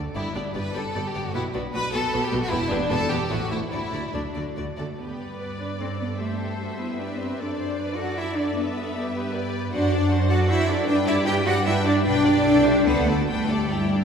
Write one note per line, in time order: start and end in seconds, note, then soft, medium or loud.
0.15 0.23 G1 medium
0.15 0.23 G2 medium
0.15 0.23 B3 medium
0.15 0.34 E4 medium
0.15 0.23 G4 medium
0.15 0.23 D5 medium
0.34 0.44 G1 medium
0.34 0.43 G2 medium
0.34 0.42 B3 medium
0.34 0.55 D4 medium
0.34 0.42 G4 medium
0.34 0.43 D5 soft
0.55 0.64 G1 medium
0.55 0.64 G2 medium
0.55 0.63 B3 medium
0.55 0.63 G4 soft
0.55 0.75 B4 medium
0.55 0.63 D5 medium
0.75 0.83 G1 medium
0.75 0.83 G2 medium
0.75 0.83 B3 medium
0.75 0.83 G4 soft
0.75 1.05 A4 medium
0.75 0.83 D5 medium
0.95 1.04 G1 medium
0.95 1.03 G2 medium
0.95 1.03 B3 medium
0.95 1.03 G4 medium
0.95 1.03 D5 medium
1.06 1.26 G4 medium
1.14 1.24 G1 medium
1.14 1.23 G2 medium
1.14 1.22 B3 medium
1.14 1.22 G4 medium
1.14 1.23 D5 medium
1.25 1.35 F#4 medium
1.34 1.43 B1 medium
1.34 1.43 B2 medium
1.34 1.42 B3 medium
1.34 1.42 E4 loud
1.34 1.42 F#4 medium
1.34 1.42 B4 medium
1.54 1.63 B1 medium
1.54 1.62 B2 medium
1.54 1.62 B3 medium
1.54 1.62 D4 medium
1.54 1.62 F#4 medium
1.54 1.62 B4 medium
1.73 1.82 B1 medium
1.73 1.82 B2 medium
1.73 1.82 B3 medium
1.73 1.82 F#4 medium
1.73 1.81 B4 medium
1.73 1.93 B4 loud
1.93 2.01 B1 medium
1.93 2.01 B2 medium
1.93 2.02 B3 medium
1.93 2.01 F#4 medium
1.93 2.21 A4 loud
1.93 2.01 B4 medium
2.12 2.21 B1 medium
2.12 2.20 B2 medium
2.12 2.20 B3 medium
2.12 2.21 F#4 medium
2.12 2.20 B4 medium
2.22 2.41 G4 loud
2.31 2.40 B1 medium
2.31 2.40 B2 medium
2.31 2.40 B3 medium
2.31 2.40 F#4 medium
2.31 2.39 B4 medium
2.42 2.51 F#4 loud
2.50 2.59 E1 medium
2.50 2.59 E2 medium
2.50 2.59 B3 medium
2.50 2.70 E4 loud
2.50 2.59 G4 medium
2.50 2.58 B4 medium
2.70 2.78 E1 medium
2.70 2.78 E2 medium
2.70 2.79 B3 medium
2.70 2.90 D4 loud
2.70 2.78 G4 medium
2.70 2.78 B4 medium
2.89 2.98 E1 medium
2.89 2.98 E2 medium
2.89 2.98 B3 medium
2.89 2.98 G4 medium
2.89 3.10 A4 loud
2.89 2.97 B4 medium
3.09 3.18 E1 medium
3.09 3.19 E2 medium
3.09 3.18 B3 medium
3.09 3.30 G4 loud
3.09 3.18 G4 medium
3.09 3.18 B4 medium
3.30 3.39 A1 medium
3.30 3.38 A2 medium
3.30 3.39 A3 medium
3.30 3.38 E4 medium
3.30 3.51 F#4 medium
3.30 3.38 C5 medium
3.50 3.59 A1 medium
3.50 3.59 A2 medium
3.50 3.59 A3 medium
3.50 3.59 E4 medium
3.50 3.58 C5 medium
3.72 3.80 D2 medium
3.72 3.80 D3 medium
3.72 3.80 A3 medium
3.72 4.13 E4 medium
3.72 3.80 F#4 medium
3.72 3.80 D5 medium
3.93 4.01 D2 medium
3.93 4.01 D3 medium
3.93 4.01 A3 soft
3.93 4.01 F#4 soft
3.93 4.01 D5 soft
4.14 4.22 D2 medium
4.14 4.22 D3 medium
4.14 4.22 A3 soft
4.14 4.57 D4 medium
4.14 4.22 F#4 soft
4.14 4.22 D5 soft
4.35 4.43 D2 soft
4.35 4.44 D3 soft
4.35 4.43 A3 soft
4.35 4.44 F#4 soft
4.35 4.43 D5 soft
4.57 4.65 D2 medium
4.57 4.65 D3 medium
4.57 4.65 A3 soft
4.57 4.65 F#4 soft
4.57 4.65 D5 soft
4.78 4.86 D2 soft
4.78 4.87 D3 soft
4.78 4.86 A3 soft
4.78 4.98 A3 medium
4.78 4.86 F#4 soft
4.78 4.86 A4 soft
4.78 4.86 D5 soft
4.99 7.35 G2 soft
4.99 5.59 B3 medium
4.99 5.37 G4 soft
4.99 5.59 B4 soft
4.99 5.37 B4 soft
4.99 6.16 D5 soft
5.39 5.58 B4 soft
5.39 6.20 D5 soft
5.59 5.68 D4 medium
5.59 5.80 B4 soft
5.59 5.80 D5 soft
5.80 5.89 C4 medium
5.80 6.20 A4 soft
5.80 6.00 C5 soft
6.01 6.09 B3 medium
6.01 6.09 B4 soft
6.20 6.79 A3 medium
6.20 6.60 G4 soft
6.20 6.78 A4 medium
6.20 6.98 C5 soft
6.20 6.38 E5 soft
6.40 7.37 E5 soft
6.61 6.80 F#4 soft
6.80 6.99 B3 medium
6.80 7.00 E4 soft
6.80 6.99 B4 soft
6.99 7.19 D4 medium
6.99 7.38 G4 soft
6.99 7.39 B4 soft
6.99 7.19 D5 medium
7.19 7.39 C4 medium
7.19 7.39 C5 medium
7.39 8.54 F#2 medium
7.39 7.98 D4 medium
7.39 7.59 A4 medium
7.39 7.76 D5 soft
7.39 7.98 D5 medium
7.59 7.78 C5 soft
7.78 7.98 B4 medium
7.78 8.55 D5 soft
7.78 8.94 D5 medium
7.97 8.17 F#4 medium
7.97 8.16 A4 medium
7.97 8.17 F#5 medium
8.17 8.37 E4 medium
8.17 8.94 A4 medium
8.17 8.37 E5 medium
8.36 8.56 D4 medium
8.36 8.56 D5 medium
8.55 9.70 G2 medium
8.55 9.32 B3 medium
8.55 9.32 B4 medium
8.55 9.34 E5 medium
8.96 9.32 G4 medium
8.96 9.03 D5 medium
9.14 9.32 B4 medium
9.33 9.72 G4 medium
9.33 9.72 B4 medium
9.33 9.72 D5 medium
9.72 10.84 F#2 medium
9.72 10.26 D4 loud
9.72 9.90 F#4 medium
9.72 9.90 C5 medium
9.72 10.26 D5 medium
9.72 9.90 F#5 medium
9.91 10.11 A4 medium
9.91 10.11 D5 medium
10.10 10.30 F#4 medium
10.10 10.30 C5 medium
10.10 10.30 F#5 medium
10.29 10.49 F#4 loud
10.29 10.49 A4 medium
10.29 10.49 D5 medium
10.29 10.37 F#5 medium
10.48 10.68 E4 loud
10.48 10.67 F#4 medium
10.48 10.67 C5 medium
10.48 10.68 E5 medium
10.48 10.67 F#5 medium
10.68 10.86 D4 loud
10.68 10.88 A4 medium
10.68 10.87 D5 medium
10.68 10.86 D5 medium
10.87 12.03 G2 medium
10.87 11.05 D4 medium
10.87 10.95 D4 loud
10.87 11.06 B4 medium
10.87 10.95 D5 loud
10.87 11.06 G5 medium
11.06 11.26 E4 loud
11.06 11.26 G4 medium
11.06 11.26 D5 medium
11.06 11.27 D5 medium
11.06 11.15 E5 loud
11.26 11.46 D4 medium
11.26 11.34 G4 loud
11.26 11.46 B4 medium
11.26 11.34 G5 loud
11.26 11.46 G5 medium
11.46 11.54 F#4 loud
11.46 11.66 G4 medium
11.46 11.66 D5 medium
11.46 11.65 F#5 loud
11.65 11.84 D4 medium
11.65 11.74 E4 loud
11.65 11.84 B4 medium
11.65 11.85 E5 medium
11.65 11.85 G5 medium
11.85 12.04 D4 loud
11.85 12.05 G4 medium
11.85 12.05 D5 medium
11.85 11.94 D5 loud
12.05 12.44 B1 medium
12.05 12.24 D4 medium
12.05 12.84 D4 loud
12.05 12.24 B4 medium
12.05 12.84 D5 loud
12.05 12.24 G5 medium
12.25 12.45 G4 medium
12.25 12.45 D5 medium
12.25 12.46 D5 medium
12.45 12.86 C2 medium
12.45 12.64 E4 medium
12.45 12.64 A4 medium
12.45 12.64 G5 medium
12.65 12.85 G4 medium
12.65 12.85 C5 medium
12.65 12.86 E5 medium
12.85 13.28 D2 medium
12.85 13.07 B3 loud
12.85 13.06 A4 medium
12.85 13.06 B4 loud
12.85 13.06 C5 medium
12.85 13.05 F#5 medium
13.05 13.27 A3 medium
13.05 13.28 F#4 medium
13.05 13.28 A4 medium
13.05 13.27 A4 medium
13.05 13.28 D5 medium
13.28 14.04 G1 medium
13.28 13.70 A3 medium
13.28 13.48 D4 medium
13.28 13.70 A4 medium
13.28 13.48 B4 medium
13.28 13.48 G5 medium
13.49 13.71 G4 medium
13.49 13.71 D5 medium
13.70 14.04 G3 medium
13.70 13.90 E4 medium
13.70 14.04 G4 medium
13.70 13.91 G5 medium
13.90 14.04 D4 medium
13.90 14.04 D5 medium